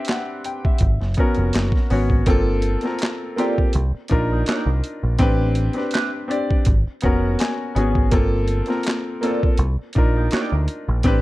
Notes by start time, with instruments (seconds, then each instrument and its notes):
Already playing: grand piano C4 D4 G4 B4 E5
0.05 closed hi-hat
0.09 grand piano F#5, snare, clap
0.44 grand piano G5, closed hi-hat
0.65 grand piano E5, kick
0.78 picked electric bass G#1, kick, closed hi-hat
1.01 picked electric bass F#1, snare
1.14 grand piano B3, kick, closed hi-hat
1.19 grand piano C#4 F#4 A#4
1.35 picked electric bass F1, closed hi-hat
1.53 picked electric bass F#1, snare, clap, closed hi-hat
1.72 kick, snare
1.90 picked electric bass G#1, grand piano B3 C#4 F#4 C#5, open hi-hat
2.10 kick
2.26 picked electric bass G1, grand piano A#3 C4 F4 A4, kick, closed hi-hat
2.62 closed hi-hat
2.81 grand piano A#3 C4 F4, closed hi-hat
2.86 grand piano A#4, snare
2.99 closed hi-hat
3.03 snare, clap
3.36 grand piano A#3 C4 F4 G4, clean electric guitar A#3 F4 A4 D5, snare, closed hi-hat
3.58 kick
3.73 picked electric bass C2, closed hi-hat
3.95 muted picked electric bass stroke
4.08 picked electric bass A#1, grand piano D4 D#4 F4 A#4, kick, closed hi-hat
4.32 clean electric guitar A#3 D#4 G4 D5
4.46 clean electric guitar A#3 D#4 G4 D5, muted picked electric bass stroke, snare, clap, closed hi-hat
4.66 picked electric bass C2
4.84 closed hi-hat
5.03 picked electric bass A#1
5.19 picked electric bass A1, grand piano C4 D4 G4 B4, kick, closed hi-hat
5.55 closed hi-hat
5.73 grand piano C4 D4 G4, closed hi-hat
5.78 grand piano B4, snare
5.91 clean electric guitar C4 G4 B4 E5, closed hi-hat
5.95 snare, clap
6.28 grand piano C4 D4 G4 D5, closed hi-hat
6.51 kick
6.65 picked electric bass G#1, kick, closed hi-hat
6.87 muted picked electric bass stroke
7.01 picked electric bass F1, grand piano B3 C#4 F#4 F#5, kick, closed hi-hat
7.05 grand piano A#4
7.39 grand piano G#5, snare, clap, closed hi-hat
7.75 picked electric bass G#1, grand piano B3 C#4 F#4 G#4 G#5, closed hi-hat
7.95 kick
8.11 picked electric bass G1, grand piano A#3 C4 F4 A4, kick, closed hi-hat
8.48 closed hi-hat
8.66 grand piano A#3 C4 F4, closed hi-hat
8.70 grand piano A#4, snare
8.83 muted clean electric guitar stroke, closed hi-hat
8.88 snare, clap
9.21 grand piano A#3 C4 F4 A4, clean electric guitar A#3 F4 A4 D5, snare, closed hi-hat
9.43 kick
9.57 picked electric bass C2, closed hi-hat
9.79 muted picked electric bass stroke
9.93 picked electric bass A#1, grand piano D4 D#4, kick, closed hi-hat
9.97 grand piano F4 A#4
10.16 clean electric guitar A#3 D#4 G4 D5
10.31 clean electric guitar A#3 D#4 G4 D5, muted picked electric bass stroke, snare, clap, closed hi-hat
10.52 picked electric bass D2
10.68 closed hi-hat
10.88 picked electric bass A#1
11.03 picked electric bass A1, grand piano C4 D4 G4 B4, kick, closed hi-hat